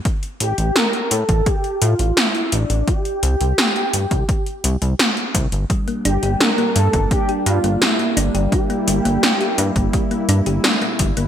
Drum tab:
HH |xxxxxxxxxxxxxxxx|xxxxxxxxxxxxxxxx|xxxxxxxxxxxxxxxx|xxxxxxxxxxxxxxxx|
SD |----o-------o---|----o-------o---|----o-------o---|----o-------o---|
BD |o------oo-------|o------oo-----o-|o------oo-------|o------oo-----o-|